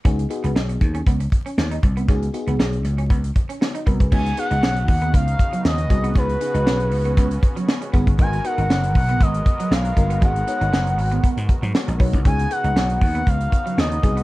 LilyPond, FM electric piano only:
\new Staff \with { instrumentName = "FM electric piano" } { \time 4/4 \key cis \mixolydian \tempo 4 = 118 << { r1 | r2. <dis' fis'>8 <fis' ais'>16 <gis' b'>16~ | <gis' b'>16 r2. r8. | r1 |
r1 | r1 | r1 | } \\ { <b dis' fis' gis'>8 <b dis' fis' gis'>4. r2 | <b dis' fis' gis'>8 <b dis' fis' gis'>4. r2 | <b dis' fis' gis'>8 <b dis' fis' gis'>4. r4. <b dis' fis' gis'>8 | <b dis' fis' gis'>8 <b dis' fis' gis'>4. r4. <b dis' fis' gis'>8 |
<b dis' fis' ais'>8 <b dis' fis' ais'>4. r4. <b dis' fis' ais'>8 | <b dis' fis' gis'>8 <b dis' fis' cis''>4. r4. <b dis' fis' cis''>8 | <b dis' fis' gis'>8 <b dis' fis' gis'>4. r4. <b dis' fis' gis'>8 | } >> }